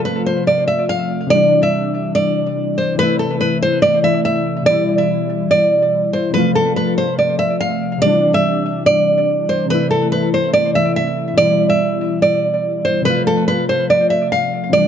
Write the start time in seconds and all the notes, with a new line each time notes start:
Already playing: C3 F3 A3 F4
0.05 B4
0.26 C5
0.47 D5
0.68 E5
0.89 F5
1.27 C3 E3 D5
1.32 G3 D4
1.63 E5
2.15 D5
2.78 C5
2.95 C3 E3
2.99 A3 E4 B4
3.19 A4
3.41 B4
3.63 C5
3.82 D5
4.02 C3 E3 A3 E4 E5
4.25 E5
4.62 B2 E3 D5
4.68 G3 E4
4.98 E5
5.51 D5
6.13 C5
6.31 C3 F3 B4
6.36 A3 F4
6.55 A4
6.76 B4
6.98 C5
7.19 D5
7.39 E5
7.61 F5
7.98 C3 E3 D5
8.03 G3 D4
8.34 E5
8.86 D5
9.49 C5
9.66 C3 E3
9.70 A3 E4 B4
9.91 A4
10.12 B4
10.34 C5
10.53 D5
10.73 C3 E3 A3 E4 E5
10.96 E5
11.34 B2 E3 D5
11.39 G3 E4
11.70 E5
12.22 D5
12.85 C5
13.02 C3 F3 B4
13.07 A3 F4
13.27 A4
13.48 B4
13.69 C5
13.90 D5
14.10 E5
14.32 F5
14.69 C3 E3 D5
14.75 G3 D4